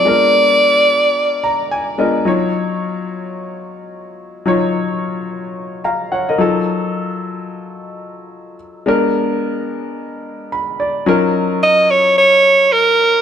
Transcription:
0, 0, Header, 1, 3, 480
1, 0, Start_track
1, 0, Key_signature, -6, "minor"
1, 0, Tempo, 550459
1, 51, Time_signature, 4, 2, 24, 8
1, 11525, End_track
2, 0, Start_track
2, 0, Title_t, "Alto saxophone"
2, 0, Program_c, 0, 65
2, 0, Note_on_c, 0, 74, 127
2, 1737, Note_off_c, 0, 74, 0
2, 10144, Note_on_c, 0, 75, 111
2, 10385, Note_on_c, 0, 73, 110
2, 10398, Note_off_c, 0, 75, 0
2, 10616, Note_off_c, 0, 73, 0
2, 10621, Note_on_c, 0, 73, 117
2, 11097, Note_on_c, 0, 70, 106
2, 11110, Note_off_c, 0, 73, 0
2, 11525, Note_off_c, 0, 70, 0
2, 11525, End_track
3, 0, Start_track
3, 0, Title_t, "Grand piano"
3, 0, Program_c, 1, 0
3, 0, Control_c, 1, 64, 127
3, 45, Note_on_c, 1, 56, 71
3, 50, Note_on_c, 1, 59, 59
3, 56, Note_on_c, 1, 62, 60
3, 60, Note_on_c, 1, 65, 67
3, 63, Control_c, 1, 64, 0
3, 67, Note_on_c, 1, 70, 78
3, 223, Control_c, 1, 64, 127
3, 1252, Note_on_c, 1, 82, 76
3, 1475, Note_off_c, 1, 82, 0
3, 1495, Note_on_c, 1, 80, 72
3, 1694, Note_off_c, 1, 56, 0
3, 1697, Note_off_c, 1, 59, 0
3, 1700, Note_off_c, 1, 62, 0
3, 1702, Note_off_c, 1, 65, 0
3, 1705, Note_off_c, 1, 70, 0
3, 1716, Note_off_c, 1, 80, 0
3, 1726, Note_on_c, 1, 56, 59
3, 1731, Note_on_c, 1, 59, 55
3, 1732, Note_on_c, 1, 75, 66
3, 1734, Note_on_c, 1, 62, 55
3, 1736, Note_on_c, 1, 65, 54
3, 1738, Note_on_c, 1, 70, 64
3, 1955, Note_off_c, 1, 75, 0
3, 1963, Note_on_c, 1, 54, 72
3, 1964, Note_off_c, 1, 65, 0
3, 1968, Note_off_c, 1, 56, 0
3, 1971, Note_off_c, 1, 59, 0
3, 1971, Note_on_c, 1, 63, 66
3, 1972, Note_off_c, 1, 62, 0
3, 1974, Note_off_c, 1, 70, 0
3, 1977, Note_on_c, 1, 65, 65
3, 1982, Control_c, 1, 64, 0
3, 1985, Note_on_c, 1, 73, 75
3, 2146, Control_c, 1, 64, 127
3, 3852, Note_off_c, 1, 54, 0
3, 3856, Note_off_c, 1, 63, 0
3, 3859, Note_off_c, 1, 65, 0
3, 3863, Note_off_c, 1, 73, 0
3, 3885, Note_on_c, 1, 54, 69
3, 3893, Note_on_c, 1, 63, 69
3, 3900, Note_on_c, 1, 65, 62
3, 3906, Note_on_c, 1, 73, 80
3, 5064, Note_off_c, 1, 54, 0
3, 5068, Note_off_c, 1, 63, 0
3, 5071, Note_off_c, 1, 65, 0
3, 5074, Note_off_c, 1, 73, 0
3, 5096, Note_on_c, 1, 82, 61
3, 5100, Note_on_c, 1, 77, 53
3, 5321, Note_off_c, 1, 82, 0
3, 5324, Note_off_c, 1, 77, 0
3, 5334, Note_on_c, 1, 78, 66
3, 5340, Note_on_c, 1, 73, 52
3, 5473, Note_off_c, 1, 78, 0
3, 5476, Note_off_c, 1, 73, 0
3, 5484, Note_on_c, 1, 75, 63
3, 5490, Note_on_c, 1, 70, 54
3, 5566, Note_on_c, 1, 54, 70
3, 5573, Note_on_c, 1, 63, 64
3, 5580, Note_on_c, 1, 65, 66
3, 5583, Control_c, 1, 64, 0
3, 5587, Note_on_c, 1, 69, 81
3, 5710, Note_off_c, 1, 75, 0
3, 5713, Note_off_c, 1, 70, 0
3, 5742, Control_c, 1, 64, 127
3, 7453, Note_off_c, 1, 54, 0
3, 7457, Note_off_c, 1, 63, 0
3, 7461, Note_off_c, 1, 65, 0
3, 7464, Note_off_c, 1, 69, 0
3, 7725, Note_on_c, 1, 56, 79
3, 7733, Note_on_c, 1, 59, 65
3, 7739, Note_on_c, 1, 62, 69
3, 7741, Control_c, 1, 64, 0
3, 7746, Note_on_c, 1, 70, 90
3, 7907, Control_c, 1, 64, 127
3, 9176, Note_on_c, 1, 83, 67
3, 9397, Note_off_c, 1, 83, 0
3, 9415, Note_on_c, 1, 74, 68
3, 9613, Note_off_c, 1, 56, 0
3, 9617, Note_off_c, 1, 59, 0
3, 9620, Note_off_c, 1, 62, 0
3, 9624, Note_off_c, 1, 70, 0
3, 9636, Note_off_c, 1, 74, 0
3, 9646, Note_on_c, 1, 54, 83
3, 9651, Note_on_c, 1, 61, 77
3, 9657, Note_on_c, 1, 63, 73
3, 9662, Control_c, 1, 64, 0
3, 9662, Note_on_c, 1, 65, 72
3, 9665, Note_on_c, 1, 70, 93
3, 9805, Control_c, 1, 64, 127
3, 11525, Note_off_c, 1, 54, 0
3, 11525, Note_off_c, 1, 61, 0
3, 11525, Note_off_c, 1, 63, 0
3, 11525, Note_off_c, 1, 65, 0
3, 11525, Note_off_c, 1, 70, 0
3, 11525, End_track
0, 0, End_of_file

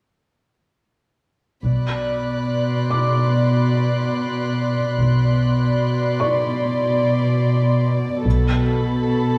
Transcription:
0, 0, Header, 1, 6, 480
1, 0, Start_track
1, 0, Key_signature, 2, "minor"
1, 0, Tempo, 840336
1, 949, Time_signature, 4, 2, 24, 8
1, 1428, Tempo, 821918
1, 5446, End_track
2, 0, Start_track
2, 0, Title_t, "Felt piano"
2, 0, Program_c, 0, 0
2, 1056, Control_c, 0, 64, 127
2, 1664, Note_on_c, 0, 86, 20
2, 3088, Note_off_c, 0, 86, 0
2, 3588, Note_on_c, 0, 85, 16
2, 3592, Note_on_c, 0, 74, 16
2, 4797, Control_c, 0, 64, 0
2, 4907, Control_c, 0, 64, 127
2, 5002, Note_off_c, 0, 85, 0
2, 5004, Note_off_c, 0, 74, 0
2, 5446, End_track
3, 0, Start_track
3, 0, Title_t, "Violin section"
3, 0, Program_c, 1, 48
3, 948, Note_on_c, 1, 83, 15
3, 950, Note_on_c, 1, 90, 14
3, 1435, Note_on_c, 1, 84, 15
3, 3568, Note_off_c, 1, 90, 0
3, 4525, Note_off_c, 1, 83, 0
3, 4530, Note_off_c, 1, 84, 0
3, 4782, Note_on_c, 1, 83, 21
3, 4783, Note_on_c, 1, 81, 20
3, 5446, Note_off_c, 1, 81, 0
3, 5446, Note_off_c, 1, 83, 0
3, 5446, End_track
4, 0, Start_track
4, 0, Title_t, "Violin section"
4, 0, Program_c, 2, 48
4, 949, Note_on_c, 2, 74, 20
4, 2852, Note_off_c, 2, 74, 0
4, 2875, Note_on_c, 2, 74, 23
4, 4764, Note_off_c, 2, 74, 0
4, 4788, Note_on_c, 2, 69, 31
4, 5446, Note_off_c, 2, 69, 0
4, 5446, End_track
5, 0, Start_track
5, 0, Title_t, "Cello section"
5, 0, Program_c, 3, 48
5, 946, Note_on_c, 3, 47, 20
5, 2850, Note_off_c, 3, 47, 0
5, 2875, Note_on_c, 3, 47, 23
5, 4764, Note_off_c, 3, 47, 0
5, 4788, Note_on_c, 3, 47, 30
5, 5446, Note_off_c, 3, 47, 0
5, 5446, End_track
6, 0, Start_track
6, 0, Title_t, "Double bass section"
6, 0, Program_c, 4, 48
6, 950, Note_on_c, 4, 35, 19
6, 1405, Note_off_c, 4, 35, 0
6, 2880, Note_on_c, 4, 35, 20
6, 3332, Note_off_c, 4, 35, 0
6, 4791, Note_on_c, 4, 35, 28
6, 5245, Note_off_c, 4, 35, 0
6, 5446, End_track
0, 0, End_of_file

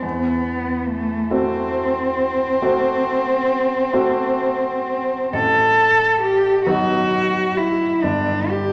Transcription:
0, 0, Header, 1, 3, 480
1, 0, Start_track
1, 0, Tempo, 839161
1, 19, Time_signature, 12, 3, 24, 8
1, 500, Tempo, 875912
1, 2420, Tempo, 949367
1, 2900, Tempo, 892857
1, 3860, Tempo, 925926
1, 4697, End_track
2, 0, Start_track
2, 0, Title_t, "Cello"
2, 0, Program_c, 0, 42
2, 17, Note_on_c, 0, 59, 54
2, 497, Note_on_c, 0, 57, 55
2, 505, Note_off_c, 0, 59, 0
2, 740, Note_on_c, 0, 60, 69
2, 748, Note_off_c, 0, 57, 0
2, 2903, Note_on_c, 0, 69, 65
2, 2911, Note_off_c, 0, 60, 0
2, 3371, Note_off_c, 0, 69, 0
2, 3375, Note_on_c, 0, 67, 64
2, 3611, Note_off_c, 0, 67, 0
2, 3619, Note_on_c, 0, 66, 66
2, 4096, Note_on_c, 0, 64, 54
2, 4104, Note_off_c, 0, 66, 0
2, 4332, Note_on_c, 0, 62, 54
2, 4340, Note_off_c, 0, 64, 0
2, 4575, Note_on_c, 0, 67, 52
2, 4583, Note_off_c, 0, 62, 0
2, 4697, Note_off_c, 0, 67, 0
2, 4697, End_track
3, 0, Start_track
3, 0, Title_t, "Grand piano"
3, 0, Program_c, 1, 0
3, 0, Control_c, 1, 64, 127
3, 14, Note_on_c, 1, 40, 34
3, 29, Control_c, 1, 64, 0
3, 118, Control_c, 1, 64, 127
3, 714, Note_off_c, 1, 40, 0
3, 736, Note_on_c, 1, 57, 29
3, 740, Note_on_c, 1, 60, 30
3, 740, Note_on_c, 1, 66, 27
3, 1436, Note_off_c, 1, 57, 0
3, 1438, Note_off_c, 1, 60, 0
3, 1438, Note_off_c, 1, 66, 0
3, 1456, Note_on_c, 1, 57, 30
3, 1456, Note_on_c, 1, 60, 31
3, 1459, Note_on_c, 1, 66, 35
3, 2148, Note_off_c, 1, 57, 0
3, 2149, Note_off_c, 1, 60, 0
3, 2150, Note_off_c, 1, 66, 0
3, 2175, Note_on_c, 1, 57, 33
3, 2176, Note_on_c, 1, 60, 33
3, 2177, Note_on_c, 1, 66, 36
3, 2880, Note_off_c, 1, 57, 0
3, 2881, Note_off_c, 1, 60, 0
3, 2881, Note_off_c, 1, 66, 0
3, 2899, Note_on_c, 1, 33, 36
3, 2908, Control_c, 1, 64, 0
3, 2989, Control_c, 1, 64, 127
3, 3595, Note_off_c, 1, 33, 0
3, 3619, Note_on_c, 1, 54, 35
3, 3619, Note_on_c, 1, 59, 34
3, 3625, Note_on_c, 1, 63, 32
3, 4313, Note_off_c, 1, 54, 0
3, 4314, Note_off_c, 1, 59, 0
3, 4316, Note_off_c, 1, 63, 0
3, 4337, Note_on_c, 1, 31, 41
3, 4342, Control_c, 1, 64, 0
3, 4437, Control_c, 1, 64, 127
3, 4697, Note_off_c, 1, 31, 0
3, 4697, End_track
0, 0, End_of_file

